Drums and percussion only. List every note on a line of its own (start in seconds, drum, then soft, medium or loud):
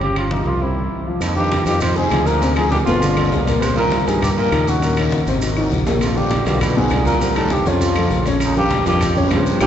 0.01 high conga soft
0.01 high timbale medium
0.16 high conga soft
0.16 high timbale medium
0.16 claves medium
0.31 high conga medium
0.46 high conga soft
1.21 high conga soft
1.21 high timbale medium
1.21 long guiro medium
1.21 claves medium
1.21 maracas medium
1.36 high conga soft
1.36 maracas soft
1.51 high conga loud
1.51 high timbale medium
1.51 short guiro medium
1.51 maracas soft
1.66 high conga soft
1.66 high timbale medium
1.66 short guiro medium
1.66 maracas medium
1.80 high conga soft
1.80 low conga medium
1.80 high timbale medium
1.80 long guiro medium
1.80 claves medium
1.80 maracas medium
1.96 high conga soft
1.96 maracas soft
2.11 high conga medium
2.11 high timbale medium
2.11 short guiro medium
2.11 claves medium
2.11 maracas soft
2.27 short guiro medium
2.27 maracas medium
2.42 high conga soft
2.42 high timbale medium
2.42 long guiro medium
2.42 maracas medium
2.56 high conga soft
2.56 high timbale medium
2.56 claves medium
2.56 maracas soft
2.72 high conga loud
2.72 short guiro medium
2.72 maracas soft
2.87 high conga soft
2.87 short guiro medium
2.87 maracas medium
3.02 high conga soft
3.02 high timbale medium
3.02 long guiro medium
3.02 maracas medium
3.17 high conga soft
3.17 high timbale medium
3.17 claves medium
3.17 maracas soft
3.32 high conga medium
3.32 low timbale medium
3.32 short guiro medium
3.32 maracas soft
3.47 high conga medium
3.47 high timbale medium
3.47 short guiro medium
3.47 maracas medium
3.62 high conga soft
3.62 high timbale medium
3.62 long guiro medium
3.62 claves medium
3.62 maracas medium
3.77 high conga soft
3.77 maracas soft
3.92 high conga loud
3.92 high timbale medium
3.92 short guiro medium
3.92 maracas soft
4.07 high conga soft
4.07 high timbale medium
4.07 short guiro medium
4.07 maracas medium
4.22 high conga soft
4.22 low conga medium
4.22 high timbale medium
4.22 long guiro medium
4.22 claves medium
4.22 maracas medium
4.37 high conga soft
4.37 maracas soft
4.52 high conga medium
4.52 high timbale medium
4.52 short guiro medium
4.52 claves medium
4.52 maracas soft
4.67 high conga medium
4.67 short guiro medium
4.67 maracas medium
4.82 high conga soft
4.82 high timbale medium
4.82 long guiro medium
4.82 maracas medium
4.97 high conga soft
4.97 high timbale loud
4.97 claves medium
4.97 maracas soft
5.12 high conga medium
5.12 short guiro medium
5.12 maracas soft
5.27 high conga soft
5.27 short guiro medium
5.27 maracas medium
5.42 high conga soft
5.42 high timbale medium
5.42 long guiro medium
5.42 maracas medium
5.57 high conga soft
5.57 high timbale medium
5.57 claves medium
5.57 maracas soft
5.72 high conga medium
5.72 short guiro medium
5.72 maracas soft
5.86 high conga medium
5.86 low timbale medium
5.86 short guiro medium
5.86 maracas medium
6.01 high conga soft
6.01 high timbale medium
6.01 long guiro medium
6.01 claves medium
6.01 maracas medium
6.16 high conga soft
6.16 maracas soft
6.31 high conga loud
6.31 high timbale medium
6.31 short guiro medium
6.31 maracas soft
6.46 high conga soft
6.46 high timbale medium
6.46 short guiro medium
6.46 maracas medium
6.61 high conga soft
6.61 low conga medium
6.61 high timbale loud
6.61 long guiro medium
6.61 claves medium
6.61 maracas medium
6.76 high conga soft
6.76 low conga medium
6.76 maracas soft
6.90 high conga medium
6.90 high timbale medium
6.90 short guiro medium
6.90 claves medium
6.90 maracas soft
7.05 high conga medium
7.05 short guiro medium
7.05 maracas medium
7.20 high conga soft
7.20 high timbale medium
7.20 long guiro medium
7.20 maracas medium
7.36 high conga soft
7.36 high timbale medium
7.36 claves medium
7.36 maracas soft
7.50 high conga loud
7.50 short guiro medium
7.50 maracas soft
7.66 high conga soft
7.66 short guiro medium
7.66 maracas medium
7.80 high conga soft
7.80 high timbale medium
7.80 long guiro medium
7.80 maracas loud
7.95 high conga soft
7.95 high timbale medium
7.95 claves medium
7.95 maracas soft
8.10 high conga medium
8.10 short guiro medium
8.10 maracas soft
8.25 high conga medium
8.25 high timbale medium
8.25 short guiro medium
8.25 maracas medium
8.40 high conga soft
8.40 high timbale medium
8.40 long guiro medium
8.40 claves medium
8.40 maracas medium
8.56 high conga soft
8.56 maracas soft
8.71 high conga loud
8.71 high timbale medium
8.71 short guiro medium
8.71 maracas soft
8.86 high conga soft
8.86 high timbale medium
8.86 short guiro medium
8.86 maracas medium
9.01 high conga soft
9.01 low conga medium
9.01 high timbale medium
9.01 long guiro medium
9.01 claves medium
9.01 maracas medium
9.17 high conga soft
9.17 low conga medium
9.17 maracas soft
9.31 high conga medium
9.31 high timbale loud
9.31 low timbale medium
9.31 short guiro medium
9.31 claves medium
9.31 maracas soft
9.46 high conga medium
9.46 short guiro medium
9.46 maracas medium
9.60 high conga loud
9.60 high timbale medium
9.60 long guiro loud
9.60 claves medium
9.60 maracas medium